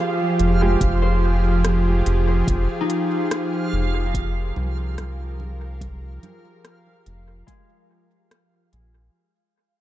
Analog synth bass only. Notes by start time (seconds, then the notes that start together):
0.40 F1
0.81 F1
2.06 F1
2.48 F1
3.73 F1
4.56 C2
7.07 F1
8.73 A#1